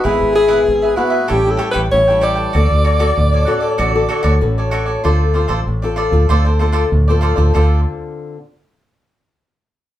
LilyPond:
<<
  \new Staff \with { instrumentName = "Cavaquinho" } { \time 4/4 \key d \major \tempo 4 = 96 <e' gis' b' e''>8 <e' gis' b' e''>16 <e' gis' b' e''>16 r16 <gis' b' e''>16 <e' gis' b' e''>16 <gis' b' e''>16 <g' a' cis'' g''>8 <g' a' cis'' g''>16 <g' a' cis'' g''>16 r16 <a' cis'' g''>16 <g' a' cis'' g''>16 <a' cis'' g''>16 | <fis' a' d''>8 <fis' a' cis'' d''>16 <fis' a' cis'' d''>16 r16 <a' cis'' d''>16 <fis' a' cis'' d''>16 <a' cis'' d''>16 <fis' a' d''>8 <fis' a' cis'' d''>16 <fis' a' cis'' d''>16 r16 <a' cis'' d''>16 <fis' a' cis'' d''>16 <a' cis'' d''>16 | \key d \minor <f' a' c'' d''>8 <f' a' c'' d''>16 <f' a' c'' d''>16 r16 <a' c'' d''>16 <f' a' c'' d''>8 <f' a' c'' d''>16 <a' c'' d''>16 <f' a' c'' d''>16 <f' a' c'' d''>16 r16 <a' c'' d''>16 <f' a' c'' d''>16 <a' c'' d''>16 | <f' a' c'' d''>8 r2. r8 | }
  \new Staff \with { instrumentName = "Alto saxophone" } { \time 4/4 \key d \major gis'8 gis'4 fis'8 \tuplet 3/2 { g'8 a'8 b'8 } cis''8 d''8~ | d''2. r4 | \key d \minor r1 | r1 | }
  \new Staff \with { instrumentName = "Nylon-string guitar" } { \time 4/4 \key d \major << { <gis b e'>8 r16 <gis b e'>8. <gis b e'>16 r16 <g cis' e'>16 <g cis' e'>8. <g cis' e'>16 <g cis' e'>8. | <fis' a'>8. <fis' a'>8. <cis' fis' a'>8 <cis' fis' a'>16 <fis' a'>8. <cis' fis' a'>4 | \key d \minor <c' f' a'>16 r16 <c' f' a'>8 r16 <c' f' a'>8 <c' f' a'>16 <c' f' a'>16 r16 <c' f' a'>8. <c' f' a'>8 <c' f' a'>16~ | <c' f' a'>8 r2. r8 | } \\ { gis,4 gis,4 a,4 e4 | d4 a,4 d4 a,4 | d4 a,4 d4 a,4 | <d c' f' a'>8 r2. r8 | } >> }
  \new Staff \with { instrumentName = "Fingered electric bass" } { \clef bass \time 4/4 \key d \major gis,,16 gis,,8. gis,,8 r8 a,,8 r16 a,,16 a,,4 | d,16 d,8. d,8 r8 a,,8 r16 d,16 a,,4 | \key d \minor d,8. a,,16 a,,8. d,16 d,4 d,8. d,16 | d,8 r2. r8 | }
>>